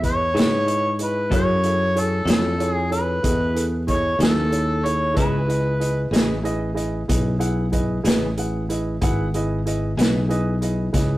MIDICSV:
0, 0, Header, 1, 6, 480
1, 0, Start_track
1, 0, Key_signature, 4, "minor"
1, 0, Tempo, 641711
1, 986, Time_signature, 12, 3, 24, 8
1, 8361, End_track
2, 0, Start_track
2, 0, Title_t, "Harmonica"
2, 0, Program_c, 0, 22
2, 44, Note_on_c, 0, 73, 96
2, 725, Note_off_c, 0, 73, 0
2, 778, Note_on_c, 0, 71, 78
2, 986, Note_off_c, 0, 71, 0
2, 1013, Note_on_c, 0, 73, 80
2, 1490, Note_on_c, 0, 69, 76
2, 1501, Note_off_c, 0, 73, 0
2, 1714, Note_off_c, 0, 69, 0
2, 1719, Note_on_c, 0, 69, 66
2, 2033, Note_off_c, 0, 69, 0
2, 2033, Note_on_c, 0, 68, 66
2, 2163, Note_off_c, 0, 68, 0
2, 2185, Note_on_c, 0, 71, 87
2, 2784, Note_off_c, 0, 71, 0
2, 2911, Note_on_c, 0, 73, 76
2, 3132, Note_off_c, 0, 73, 0
2, 3152, Note_on_c, 0, 69, 80
2, 3631, Note_on_c, 0, 73, 80
2, 3643, Note_off_c, 0, 69, 0
2, 3861, Note_off_c, 0, 73, 0
2, 3865, Note_on_c, 0, 71, 69
2, 4556, Note_off_c, 0, 71, 0
2, 8361, End_track
3, 0, Start_track
3, 0, Title_t, "Upright piano"
3, 0, Program_c, 1, 0
3, 12, Note_on_c, 1, 64, 45
3, 13, Note_on_c, 1, 68, 39
3, 18, Note_on_c, 1, 71, 39
3, 25, Note_on_c, 1, 75, 52
3, 198, Note_off_c, 1, 64, 0
3, 199, Note_off_c, 1, 68, 0
3, 201, Note_off_c, 1, 71, 0
3, 205, Note_off_c, 1, 75, 0
3, 250, Note_on_c, 1, 64, 44
3, 255, Note_on_c, 1, 71, 42
3, 257, Note_on_c, 1, 68, 45
3, 265, Note_on_c, 1, 75, 56
3, 438, Note_off_c, 1, 64, 0
3, 440, Note_off_c, 1, 71, 0
3, 441, Note_off_c, 1, 68, 0
3, 445, Note_off_c, 1, 75, 0
3, 490, Note_on_c, 1, 64, 40
3, 495, Note_on_c, 1, 68, 36
3, 503, Note_on_c, 1, 71, 38
3, 506, Note_on_c, 1, 75, 41
3, 678, Note_off_c, 1, 64, 0
3, 680, Note_off_c, 1, 68, 0
3, 684, Note_off_c, 1, 71, 0
3, 686, Note_off_c, 1, 75, 0
3, 739, Note_on_c, 1, 68, 41
3, 742, Note_on_c, 1, 64, 45
3, 747, Note_on_c, 1, 71, 41
3, 752, Note_on_c, 1, 75, 49
3, 923, Note_off_c, 1, 68, 0
3, 924, Note_off_c, 1, 64, 0
3, 927, Note_off_c, 1, 71, 0
3, 929, Note_off_c, 1, 75, 0
3, 977, Note_on_c, 1, 64, 54
3, 981, Note_on_c, 1, 68, 49
3, 994, Note_on_c, 1, 69, 51
3, 995, Note_on_c, 1, 73, 59
3, 1161, Note_off_c, 1, 64, 0
3, 1163, Note_off_c, 1, 68, 0
3, 1170, Note_off_c, 1, 69, 0
3, 1170, Note_off_c, 1, 73, 0
3, 1219, Note_on_c, 1, 64, 47
3, 1225, Note_on_c, 1, 68, 41
3, 1230, Note_on_c, 1, 69, 42
3, 1234, Note_on_c, 1, 76, 54
3, 1403, Note_off_c, 1, 64, 0
3, 1406, Note_off_c, 1, 68, 0
3, 1408, Note_off_c, 1, 69, 0
3, 1410, Note_off_c, 1, 76, 0
3, 1457, Note_on_c, 1, 64, 43
3, 1462, Note_on_c, 1, 68, 44
3, 1465, Note_on_c, 1, 69, 41
3, 1471, Note_on_c, 1, 73, 50
3, 1642, Note_off_c, 1, 64, 0
3, 1644, Note_off_c, 1, 68, 0
3, 1646, Note_off_c, 1, 69, 0
3, 1649, Note_off_c, 1, 73, 0
3, 1698, Note_on_c, 1, 64, 47
3, 1701, Note_on_c, 1, 68, 44
3, 1702, Note_on_c, 1, 69, 40
3, 1709, Note_on_c, 1, 73, 48
3, 1882, Note_off_c, 1, 64, 0
3, 1884, Note_off_c, 1, 68, 0
3, 1884, Note_off_c, 1, 69, 0
3, 1888, Note_off_c, 1, 73, 0
3, 1931, Note_on_c, 1, 64, 54
3, 1936, Note_on_c, 1, 68, 45
3, 1937, Note_on_c, 1, 69, 46
3, 1945, Note_on_c, 1, 73, 61
3, 2119, Note_off_c, 1, 64, 0
3, 2122, Note_off_c, 1, 68, 0
3, 2122, Note_off_c, 1, 69, 0
3, 2126, Note_off_c, 1, 73, 0
3, 2167, Note_on_c, 1, 64, 45
3, 2172, Note_on_c, 1, 68, 42
3, 2175, Note_on_c, 1, 69, 40
3, 2180, Note_on_c, 1, 73, 49
3, 2357, Note_off_c, 1, 64, 0
3, 2359, Note_off_c, 1, 68, 0
3, 2361, Note_off_c, 1, 69, 0
3, 2363, Note_off_c, 1, 73, 0
3, 2410, Note_on_c, 1, 64, 44
3, 2417, Note_on_c, 1, 68, 42
3, 2419, Note_on_c, 1, 69, 41
3, 2425, Note_on_c, 1, 75, 53
3, 2599, Note_off_c, 1, 64, 0
3, 2602, Note_off_c, 1, 68, 0
3, 2603, Note_off_c, 1, 69, 0
3, 2606, Note_off_c, 1, 75, 0
3, 2643, Note_on_c, 1, 64, 43
3, 2645, Note_on_c, 1, 68, 41
3, 2651, Note_on_c, 1, 69, 44
3, 2661, Note_on_c, 1, 71, 53
3, 2835, Note_off_c, 1, 64, 0
3, 2836, Note_off_c, 1, 68, 0
3, 2839, Note_off_c, 1, 69, 0
3, 2844, Note_off_c, 1, 71, 0
3, 2896, Note_on_c, 1, 64, 52
3, 2896, Note_on_c, 1, 68, 43
3, 2904, Note_on_c, 1, 69, 38
3, 2906, Note_on_c, 1, 75, 54
3, 3082, Note_off_c, 1, 64, 0
3, 3082, Note_off_c, 1, 68, 0
3, 3086, Note_off_c, 1, 69, 0
3, 3086, Note_off_c, 1, 75, 0
3, 3130, Note_on_c, 1, 64, 46
3, 3141, Note_on_c, 1, 68, 47
3, 3142, Note_on_c, 1, 71, 51
3, 3146, Note_on_c, 1, 69, 43
3, 3319, Note_off_c, 1, 64, 0
3, 3324, Note_off_c, 1, 68, 0
3, 3324, Note_off_c, 1, 71, 0
3, 3327, Note_off_c, 1, 69, 0
3, 3367, Note_on_c, 1, 64, 44
3, 3372, Note_on_c, 1, 68, 39
3, 3375, Note_on_c, 1, 69, 40
3, 3381, Note_on_c, 1, 73, 44
3, 3557, Note_off_c, 1, 64, 0
3, 3560, Note_off_c, 1, 68, 0
3, 3561, Note_off_c, 1, 69, 0
3, 3564, Note_off_c, 1, 73, 0
3, 3619, Note_on_c, 1, 64, 51
3, 3623, Note_on_c, 1, 68, 39
3, 3631, Note_on_c, 1, 69, 42
3, 3631, Note_on_c, 1, 73, 52
3, 3803, Note_off_c, 1, 64, 0
3, 3805, Note_off_c, 1, 68, 0
3, 3809, Note_off_c, 1, 69, 0
3, 3809, Note_off_c, 1, 73, 0
3, 3840, Note_on_c, 1, 64, 56
3, 3843, Note_on_c, 1, 68, 50
3, 3854, Note_on_c, 1, 71, 55
3, 3861, Note_on_c, 1, 75, 67
3, 4033, Note_off_c, 1, 64, 0
3, 4035, Note_off_c, 1, 68, 0
3, 4040, Note_off_c, 1, 71, 0
3, 4044, Note_off_c, 1, 75, 0
3, 4089, Note_on_c, 1, 64, 48
3, 4095, Note_on_c, 1, 68, 46
3, 4096, Note_on_c, 1, 71, 45
3, 4104, Note_on_c, 1, 75, 53
3, 4278, Note_off_c, 1, 64, 0
3, 4281, Note_off_c, 1, 68, 0
3, 4281, Note_off_c, 1, 71, 0
3, 4285, Note_off_c, 1, 75, 0
3, 4333, Note_on_c, 1, 64, 48
3, 4336, Note_on_c, 1, 68, 45
3, 4342, Note_on_c, 1, 71, 41
3, 4344, Note_on_c, 1, 75, 50
3, 4519, Note_off_c, 1, 64, 0
3, 4521, Note_off_c, 1, 68, 0
3, 4524, Note_off_c, 1, 71, 0
3, 4525, Note_off_c, 1, 75, 0
3, 4573, Note_on_c, 1, 64, 54
3, 4577, Note_on_c, 1, 68, 52
3, 4582, Note_on_c, 1, 71, 53
3, 4585, Note_on_c, 1, 75, 69
3, 4760, Note_off_c, 1, 64, 0
3, 4762, Note_off_c, 1, 68, 0
3, 4764, Note_off_c, 1, 71, 0
3, 4766, Note_off_c, 1, 75, 0
3, 4812, Note_on_c, 1, 64, 63
3, 4814, Note_on_c, 1, 68, 59
3, 4818, Note_on_c, 1, 71, 57
3, 4825, Note_on_c, 1, 75, 75
3, 4999, Note_off_c, 1, 64, 0
3, 5000, Note_off_c, 1, 68, 0
3, 5002, Note_off_c, 1, 71, 0
3, 5005, Note_off_c, 1, 75, 0
3, 5044, Note_on_c, 1, 68, 54
3, 5046, Note_on_c, 1, 64, 57
3, 5051, Note_on_c, 1, 71, 48
3, 5057, Note_on_c, 1, 75, 62
3, 5235, Note_off_c, 1, 68, 0
3, 5236, Note_off_c, 1, 64, 0
3, 5238, Note_off_c, 1, 71, 0
3, 5241, Note_off_c, 1, 75, 0
3, 5296, Note_on_c, 1, 64, 55
3, 5300, Note_on_c, 1, 68, 47
3, 5302, Note_on_c, 1, 71, 53
3, 5306, Note_on_c, 1, 75, 59
3, 5481, Note_off_c, 1, 64, 0
3, 5482, Note_off_c, 1, 68, 0
3, 5484, Note_off_c, 1, 71, 0
3, 5486, Note_off_c, 1, 75, 0
3, 5527, Note_on_c, 1, 64, 61
3, 5530, Note_on_c, 1, 68, 55
3, 5533, Note_on_c, 1, 71, 53
3, 5536, Note_on_c, 1, 78, 64
3, 5716, Note_off_c, 1, 64, 0
3, 5718, Note_off_c, 1, 68, 0
3, 5719, Note_off_c, 1, 71, 0
3, 5721, Note_off_c, 1, 78, 0
3, 5772, Note_on_c, 1, 64, 53
3, 5775, Note_on_c, 1, 68, 49
3, 5779, Note_on_c, 1, 71, 50
3, 5786, Note_on_c, 1, 75, 58
3, 5958, Note_off_c, 1, 64, 0
3, 5960, Note_off_c, 1, 68, 0
3, 5962, Note_off_c, 1, 71, 0
3, 5965, Note_off_c, 1, 75, 0
3, 6010, Note_on_c, 1, 64, 61
3, 6010, Note_on_c, 1, 68, 53
3, 6018, Note_on_c, 1, 71, 55
3, 6026, Note_on_c, 1, 75, 59
3, 6197, Note_off_c, 1, 64, 0
3, 6197, Note_off_c, 1, 68, 0
3, 6201, Note_off_c, 1, 71, 0
3, 6205, Note_off_c, 1, 75, 0
3, 6265, Note_on_c, 1, 64, 50
3, 6265, Note_on_c, 1, 68, 46
3, 6270, Note_on_c, 1, 71, 45
3, 6276, Note_on_c, 1, 78, 55
3, 6444, Note_off_c, 1, 64, 0
3, 6444, Note_off_c, 1, 68, 0
3, 6447, Note_off_c, 1, 71, 0
3, 6450, Note_off_c, 1, 78, 0
3, 6500, Note_on_c, 1, 64, 55
3, 6503, Note_on_c, 1, 68, 46
3, 6503, Note_on_c, 1, 71, 49
3, 6513, Note_on_c, 1, 75, 53
3, 6682, Note_off_c, 1, 64, 0
3, 6683, Note_off_c, 1, 71, 0
3, 6684, Note_off_c, 1, 68, 0
3, 6688, Note_off_c, 1, 75, 0
3, 6742, Note_on_c, 1, 64, 72
3, 6743, Note_on_c, 1, 68, 64
3, 6752, Note_on_c, 1, 71, 59
3, 6757, Note_on_c, 1, 78, 75
3, 6922, Note_off_c, 1, 64, 0
3, 6923, Note_off_c, 1, 68, 0
3, 6927, Note_off_c, 1, 71, 0
3, 6930, Note_off_c, 1, 78, 0
3, 6988, Note_on_c, 1, 64, 56
3, 6988, Note_on_c, 1, 68, 55
3, 6996, Note_on_c, 1, 71, 55
3, 7000, Note_on_c, 1, 75, 62
3, 7165, Note_off_c, 1, 68, 0
3, 7166, Note_off_c, 1, 64, 0
3, 7170, Note_off_c, 1, 71, 0
3, 7171, Note_off_c, 1, 75, 0
3, 7222, Note_on_c, 1, 64, 54
3, 7225, Note_on_c, 1, 68, 45
3, 7231, Note_on_c, 1, 71, 49
3, 7236, Note_on_c, 1, 75, 61
3, 7402, Note_off_c, 1, 64, 0
3, 7404, Note_off_c, 1, 68, 0
3, 7407, Note_off_c, 1, 71, 0
3, 7409, Note_off_c, 1, 75, 0
3, 7457, Note_on_c, 1, 64, 54
3, 7459, Note_on_c, 1, 68, 50
3, 7467, Note_on_c, 1, 71, 52
3, 7469, Note_on_c, 1, 75, 59
3, 7639, Note_off_c, 1, 64, 0
3, 7641, Note_off_c, 1, 68, 0
3, 7644, Note_off_c, 1, 71, 0
3, 7645, Note_off_c, 1, 75, 0
3, 7695, Note_on_c, 1, 68, 59
3, 7696, Note_on_c, 1, 64, 59
3, 7704, Note_on_c, 1, 71, 58
3, 7709, Note_on_c, 1, 75, 70
3, 7878, Note_off_c, 1, 68, 0
3, 7879, Note_off_c, 1, 64, 0
3, 7883, Note_off_c, 1, 71, 0
3, 7885, Note_off_c, 1, 75, 0
3, 7936, Note_on_c, 1, 64, 49
3, 7940, Note_on_c, 1, 68, 44
3, 7947, Note_on_c, 1, 71, 45
3, 7952, Note_on_c, 1, 75, 57
3, 8118, Note_off_c, 1, 64, 0
3, 8121, Note_off_c, 1, 68, 0
3, 8124, Note_off_c, 1, 71, 0
3, 8126, Note_off_c, 1, 75, 0
3, 8172, Note_on_c, 1, 64, 54
3, 8173, Note_on_c, 1, 68, 49
3, 8175, Note_on_c, 1, 71, 53
3, 8182, Note_on_c, 1, 75, 57
3, 8356, Note_off_c, 1, 64, 0
3, 8356, Note_off_c, 1, 68, 0
3, 8358, Note_off_c, 1, 71, 0
3, 8361, Note_off_c, 1, 75, 0
3, 8361, End_track
4, 0, Start_track
4, 0, Title_t, "Clean electric guitar"
4, 0, Program_c, 2, 27
4, 254, Note_on_c, 2, 68, 52
4, 260, Note_on_c, 2, 64, 53
4, 266, Note_on_c, 2, 59, 46
4, 269, Note_on_c, 2, 49, 48
4, 404, Note_off_c, 2, 68, 0
4, 406, Note_off_c, 2, 64, 0
4, 409, Note_off_c, 2, 59, 0
4, 411, Note_off_c, 2, 49, 0
4, 968, Note_on_c, 2, 54, 57
4, 973, Note_on_c, 2, 61, 63
4, 977, Note_on_c, 2, 64, 68
4, 979, Note_on_c, 2, 69, 70
4, 1121, Note_off_c, 2, 54, 0
4, 1123, Note_off_c, 2, 61, 0
4, 1125, Note_off_c, 2, 64, 0
4, 1127, Note_off_c, 2, 69, 0
4, 1684, Note_on_c, 2, 69, 63
4, 1693, Note_on_c, 2, 64, 56
4, 1698, Note_on_c, 2, 61, 50
4, 1700, Note_on_c, 2, 54, 54
4, 1839, Note_off_c, 2, 69, 0
4, 1844, Note_off_c, 2, 64, 0
4, 1846, Note_off_c, 2, 61, 0
4, 1847, Note_off_c, 2, 54, 0
4, 3140, Note_on_c, 2, 69, 63
4, 3147, Note_on_c, 2, 64, 57
4, 3149, Note_on_c, 2, 54, 50
4, 3151, Note_on_c, 2, 61, 49
4, 3287, Note_off_c, 2, 69, 0
4, 3291, Note_off_c, 2, 64, 0
4, 3292, Note_off_c, 2, 54, 0
4, 3293, Note_off_c, 2, 61, 0
4, 3860, Note_on_c, 2, 49, 65
4, 3865, Note_on_c, 2, 59, 65
4, 3875, Note_on_c, 2, 64, 66
4, 3880, Note_on_c, 2, 68, 72
4, 4007, Note_off_c, 2, 49, 0
4, 4010, Note_off_c, 2, 59, 0
4, 4015, Note_off_c, 2, 64, 0
4, 4017, Note_off_c, 2, 68, 0
4, 4585, Note_on_c, 2, 68, 73
4, 4590, Note_on_c, 2, 64, 67
4, 4597, Note_on_c, 2, 59, 61
4, 4599, Note_on_c, 2, 49, 57
4, 4729, Note_off_c, 2, 68, 0
4, 4732, Note_off_c, 2, 64, 0
4, 4735, Note_off_c, 2, 59, 0
4, 4737, Note_off_c, 2, 49, 0
4, 6025, Note_on_c, 2, 68, 63
4, 6032, Note_on_c, 2, 64, 64
4, 6033, Note_on_c, 2, 59, 61
4, 6039, Note_on_c, 2, 49, 55
4, 6169, Note_off_c, 2, 68, 0
4, 6172, Note_off_c, 2, 64, 0
4, 6173, Note_off_c, 2, 59, 0
4, 6176, Note_off_c, 2, 49, 0
4, 7463, Note_on_c, 2, 68, 72
4, 7467, Note_on_c, 2, 64, 62
4, 7475, Note_on_c, 2, 59, 56
4, 7482, Note_on_c, 2, 49, 59
4, 7606, Note_off_c, 2, 68, 0
4, 7609, Note_off_c, 2, 64, 0
4, 7613, Note_off_c, 2, 59, 0
4, 7616, Note_off_c, 2, 49, 0
4, 8361, End_track
5, 0, Start_track
5, 0, Title_t, "Fingered electric bass"
5, 0, Program_c, 3, 33
5, 0, Note_on_c, 3, 40, 72
5, 242, Note_off_c, 3, 40, 0
5, 260, Note_on_c, 3, 44, 68
5, 962, Note_off_c, 3, 44, 0
5, 982, Note_on_c, 3, 42, 79
5, 1683, Note_off_c, 3, 42, 0
5, 1686, Note_on_c, 3, 41, 83
5, 2395, Note_off_c, 3, 41, 0
5, 2423, Note_on_c, 3, 40, 74
5, 3123, Note_off_c, 3, 40, 0
5, 3132, Note_on_c, 3, 39, 73
5, 3838, Note_off_c, 3, 39, 0
5, 3865, Note_on_c, 3, 37, 73
5, 4564, Note_off_c, 3, 37, 0
5, 4570, Note_on_c, 3, 33, 78
5, 5276, Note_off_c, 3, 33, 0
5, 5303, Note_on_c, 3, 35, 72
5, 6002, Note_off_c, 3, 35, 0
5, 6017, Note_on_c, 3, 33, 77
5, 6718, Note_off_c, 3, 33, 0
5, 6747, Note_on_c, 3, 32, 80
5, 7443, Note_off_c, 3, 32, 0
5, 7460, Note_on_c, 3, 35, 83
5, 8159, Note_off_c, 3, 35, 0
5, 8182, Note_on_c, 3, 37, 78
5, 8361, Note_off_c, 3, 37, 0
5, 8361, End_track
6, 0, Start_track
6, 0, Title_t, "Drums"
6, 27, Note_on_c, 9, 36, 57
6, 27, Note_on_c, 9, 42, 48
6, 102, Note_off_c, 9, 36, 0
6, 102, Note_off_c, 9, 42, 0
6, 275, Note_on_c, 9, 42, 73
6, 294, Note_on_c, 9, 38, 96
6, 350, Note_off_c, 9, 42, 0
6, 369, Note_off_c, 9, 38, 0
6, 509, Note_on_c, 9, 42, 53
6, 584, Note_off_c, 9, 42, 0
6, 741, Note_on_c, 9, 42, 56
6, 816, Note_off_c, 9, 42, 0
6, 984, Note_on_c, 9, 36, 99
6, 984, Note_on_c, 9, 42, 67
6, 1059, Note_off_c, 9, 36, 0
6, 1059, Note_off_c, 9, 42, 0
6, 1224, Note_on_c, 9, 42, 54
6, 1299, Note_off_c, 9, 42, 0
6, 1471, Note_on_c, 9, 42, 60
6, 1546, Note_off_c, 9, 42, 0
6, 1701, Note_on_c, 9, 42, 78
6, 1721, Note_on_c, 9, 38, 101
6, 1776, Note_off_c, 9, 42, 0
6, 1796, Note_off_c, 9, 38, 0
6, 1946, Note_on_c, 9, 42, 52
6, 2021, Note_off_c, 9, 42, 0
6, 2186, Note_on_c, 9, 42, 46
6, 2261, Note_off_c, 9, 42, 0
6, 2424, Note_on_c, 9, 36, 79
6, 2424, Note_on_c, 9, 42, 80
6, 2499, Note_off_c, 9, 36, 0
6, 2499, Note_off_c, 9, 42, 0
6, 2667, Note_on_c, 9, 42, 58
6, 2742, Note_off_c, 9, 42, 0
6, 2902, Note_on_c, 9, 42, 49
6, 2905, Note_on_c, 9, 36, 62
6, 2977, Note_off_c, 9, 42, 0
6, 2980, Note_off_c, 9, 36, 0
6, 3143, Note_on_c, 9, 42, 73
6, 3163, Note_on_c, 9, 38, 99
6, 3218, Note_off_c, 9, 42, 0
6, 3238, Note_off_c, 9, 38, 0
6, 3384, Note_on_c, 9, 42, 54
6, 3459, Note_off_c, 9, 42, 0
6, 3633, Note_on_c, 9, 42, 54
6, 3708, Note_off_c, 9, 42, 0
6, 3864, Note_on_c, 9, 42, 59
6, 3867, Note_on_c, 9, 36, 88
6, 3939, Note_off_c, 9, 42, 0
6, 3942, Note_off_c, 9, 36, 0
6, 4112, Note_on_c, 9, 42, 46
6, 4186, Note_off_c, 9, 42, 0
6, 4348, Note_on_c, 9, 42, 56
6, 4423, Note_off_c, 9, 42, 0
6, 4589, Note_on_c, 9, 42, 79
6, 4608, Note_on_c, 9, 38, 97
6, 4664, Note_off_c, 9, 42, 0
6, 4683, Note_off_c, 9, 38, 0
6, 4826, Note_on_c, 9, 42, 52
6, 4901, Note_off_c, 9, 42, 0
6, 5066, Note_on_c, 9, 42, 52
6, 5141, Note_off_c, 9, 42, 0
6, 5307, Note_on_c, 9, 36, 78
6, 5307, Note_on_c, 9, 42, 84
6, 5381, Note_off_c, 9, 36, 0
6, 5382, Note_off_c, 9, 42, 0
6, 5541, Note_on_c, 9, 42, 55
6, 5616, Note_off_c, 9, 42, 0
6, 5780, Note_on_c, 9, 42, 57
6, 5783, Note_on_c, 9, 36, 63
6, 5855, Note_off_c, 9, 42, 0
6, 5858, Note_off_c, 9, 36, 0
6, 6021, Note_on_c, 9, 42, 77
6, 6040, Note_on_c, 9, 38, 104
6, 6096, Note_off_c, 9, 42, 0
6, 6115, Note_off_c, 9, 38, 0
6, 6265, Note_on_c, 9, 42, 52
6, 6340, Note_off_c, 9, 42, 0
6, 6507, Note_on_c, 9, 42, 56
6, 6582, Note_off_c, 9, 42, 0
6, 6744, Note_on_c, 9, 42, 71
6, 6746, Note_on_c, 9, 36, 89
6, 6819, Note_off_c, 9, 42, 0
6, 6821, Note_off_c, 9, 36, 0
6, 6988, Note_on_c, 9, 42, 51
6, 7063, Note_off_c, 9, 42, 0
6, 7231, Note_on_c, 9, 42, 56
6, 7306, Note_off_c, 9, 42, 0
6, 7470, Note_on_c, 9, 42, 70
6, 7490, Note_on_c, 9, 38, 89
6, 7545, Note_off_c, 9, 42, 0
6, 7565, Note_off_c, 9, 38, 0
6, 7708, Note_on_c, 9, 42, 45
6, 7783, Note_off_c, 9, 42, 0
6, 7944, Note_on_c, 9, 42, 47
6, 8019, Note_off_c, 9, 42, 0
6, 8182, Note_on_c, 9, 42, 76
6, 8184, Note_on_c, 9, 36, 81
6, 8201, Note_on_c, 9, 38, 32
6, 8257, Note_off_c, 9, 42, 0
6, 8259, Note_off_c, 9, 36, 0
6, 8276, Note_off_c, 9, 38, 0
6, 8361, End_track
0, 0, End_of_file